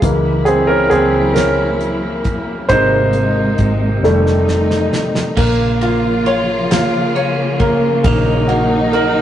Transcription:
0.01 C#2 E3 F#3 G#3 A#3 E4, kick, closed hi-hat
0.45 C4 G#4, closed hi-hat
0.67 C#4 A#4
0.90 C#2 C4 G#4, closed hi-hat
1.34 C#4 A#4, snare, closed hi-hat
1.81 closed hi-hat
2.24 kick, closed hi-hat
2.69 G#1 C3 G#3 A#3 D#4 C5, kick, closed hi-hat
3.13 closed hi-hat
3.58 G#1, kick, closed hi-hat
4.02 F1 D#3 F3 G3 A3 D#4, snare
4.27 snare
4.48 snare
4.71 snare
4.93 snare
5.15 snare
5.37 A#1 C#3 F3 A#3 F4, kick, crash
5.81 A#3 F4, ride
6.26 F4 C#5, ride
6.71 A#3 F4, snare, ride
7.15 C#4 C#5, ride
7.60 A#3, kick, ride
8.04 A#1 D#3 F#3 A#3 D#4, kick, ride
8.47 A#3 F#4, ride
8.93 F#4 A#4, ride

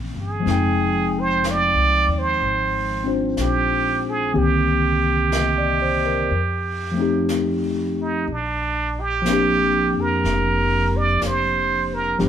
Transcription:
Already playing: A#1 E3 A#3 C4 C#4 G5
0.14 G1
0.22 G#4
0.40 F3 G#3
0.46 F1 C4 D#4, brush sweep, snare
0.51 G5
1.19 C5
1.44 brush sweep, snare, hi-hat pedal
1.51 D5
1.75 C2
2.08 D#2
2.19 C5
2.41 G#1, brush sweep
3.04 C4 D4 F4 C5
3.37 A#1, brush sweep, snare, hi-hat pedal
3.42 G4
4.10 G#4
4.33 C2 D3 D#3 A#3 C4 G4, brush sweep
4.38 G4
5.32 D#5, brush sweep, snare, hi-hat pedal
5.58 D5
5.82 C5
6.06 A#4
6.31 F2, brush sweep
6.92 F3 A3
6.97 C4 D#4
7.02 G4
7.29 brush sweep, snare, hi-hat pedal
8.02 D#4
8.27 A#1, brush sweep
8.32 D4
9.01 G4
9.22 F3 A#3
9.26 C4, brush sweep, snare, hi-hat pedal
9.30 D4 G4
9.93 F2
10.01 A#4
10.23 F1, brush sweep, snare
10.97 D5
11.22 F1, brush sweep, snare, hi-hat pedal
11.27 C5
11.94 A#4
12.19 G1 F3 G3 B3 D4 G4, brush sweep, snare

